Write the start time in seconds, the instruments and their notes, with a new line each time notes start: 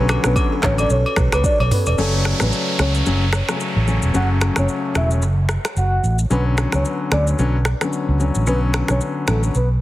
Already playing: fingered electric bass B1, grand piano D3 F#3 B3 C#4, glass harmonica C#4 A4 C#5
0.09 kalimba G4 B4, finger snap, cross-stick, high agogo, shaker
0.24 fingered electric bass B1, grand piano D3 F#3 B3 C#4, soft synth lead B4, finger snap, cross-stick, shaker
0.36 kick, high agogo, shaker
0.52 kalimba F#4 A4
0.63 fingered electric bass A1, grand piano D3 F#3 B3 C#4, soft synth lead C#5, finger snap, kick, cross-stick, clap, shaker
0.78 kalimba F#4 A4, soft synth lead D5, high agogo, shaker
0.90 fingered electric bass B1, soft synth lead C#5, shaker
1.06 high agogo
1.16 fingered electric bass B1, kalimba G4 B4, finger snap, kick, cross-stick, shaker
1.32 fingered electric bass C#2, soft synth lead B4, finger snap, cross-stick, high agogo, shaker
1.44 soft synth lead D5, kick, shaker
1.60 fingered electric bass B1, kalimba A4 C#5, high agogo
1.71 soft synth lead B4, mid tom, open hi-hat, shaker
1.86 fingered electric bass E1, kalimba B4 D5, high agogo, shaker
1.98 fingered electric bass F#1, grand piano C#3 F#3 A3 C#4, soft synth lead A4, downlifter, shaker
2.25 finger snap, cross-stick, shaker
2.40 fingered electric bass A1, grand piano C#3 F#3 A3 C#4, soft synth lead B4, finger snap, cross-stick, shaker
2.52 shaker
2.79 fingered electric bass C#2, grand piano C#3 F#3 A3 C#4, soft synth lead C#5, finger snap, cross-stick, shaker
2.95 shaker
3.06 fingered electric bass F#1, grand piano C#3 F#3 A3 C#4, shaker
3.33 finger snap, cross-stick, shaker
3.49 grand piano C#3 F#3 A3 C#4, finger snap, cross-stick, shaker
3.60 shaker
3.76 fingered electric bass A1
3.87 grand piano C#3 F#3 A3 C#4, shaker
4.02 fingered electric bass E1, shaker
4.14 fingered electric bass F#1, grand piano C#3 F#3 A3 C#4, soft synth lead F#5, shaker
4.41 finger snap, cross-stick, shaker
4.56 fingered electric bass F#1, grand piano C#3 F#3 A3 C#4, soft synth lead C#5, finger snap, cross-stick, shaker
4.68 shaker
4.95 fingered electric bass E1, grand piano C#3 F#3 A3 C#4, soft synth lead E5, finger snap, cross-stick, shaker
5.11 shaker
5.22 fingered electric bass F#1, shaker
5.49 finger snap, cross-stick, shaker
5.65 finger snap, cross-stick, shaker
5.76 fingered electric bass F#1, soft synth lead F#5, shaker
6.03 fingered electric bass A1, shaker
6.19 shaker
6.30 fingered electric bass B1, grand piano D3 F#3 B3 C#4, soft synth lead B4, shaker
6.57 finger snap, cross-stick, shaker
6.72 fingered electric bass C#2, grand piano D3 F#3 B3 C#4, soft synth lead C#5, finger snap, cross-stick, shaker
6.85 shaker
7.11 fingered electric bass D2, grand piano D3 F#3 B3 C#4, soft synth lead D5, finger snap, cross-stick, shaker
7.27 shaker
7.39 fingered electric bass B1, grand piano D3 F#3 B3 C#4, shaker
7.65 finger snap, cross-stick, shaker
7.81 grand piano D3 F#3 B3 C#4, finger snap, cross-stick, shaker
7.93 shaker
8.08 fingered electric bass C#2
8.20 grand piano D3 F#3 B3 C#4, shaker
8.35 fingered electric bass A1, shaker
8.47 fingered electric bass B1, grand piano D3 F#3 B3 C#4, soft synth lead B4, shaker
8.73 finger snap, cross-stick, shaker
8.88 fingered electric bass B1, grand piano D3 F#3 B3 C#4, soft synth lead C#5, finger snap, cross-stick, shaker
9.01 shaker
9.27 fingered electric bass A1, grand piano D3 F#3 B3 C#4, soft synth lead A4, finger snap, cross-stick, shaker
9.43 shaker
9.55 fingered electric bass B1, soft synth lead B4, shaker